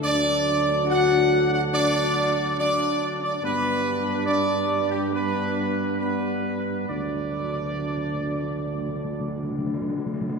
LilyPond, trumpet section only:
\new Staff \with { instrumentName = "Trumpet section" } { \time 4/4 \key d \major \tempo 4 = 69 d''4 fis''8. fis''16 d''4 d''8. d''16 | b'4 d''8. g'16 b'4 b'4 | d''2. r4 | }